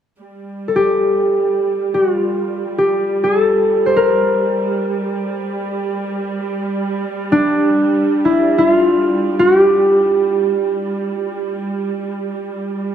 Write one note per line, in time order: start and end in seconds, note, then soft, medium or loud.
0.20 12.95 G3 soft
0.68 2.88 A4 soft
0.76 2.78 G4 medium
1.94 2.13 F#4 medium
2.13 4.47 F4 medium
2.78 5.14 G4 medium
3.24 3.41 G#4 medium
3.41 4.02 A4 medium
3.86 5.84 C5 medium
3.96 6.33 A#4 medium
7.32 10.12 D4 medium
8.25 8.58 E4 medium
8.58 8.70 E4 medium
8.70 11.10 F4 medium
9.39 9.58 F#4 medium
9.58 12.95 G4 medium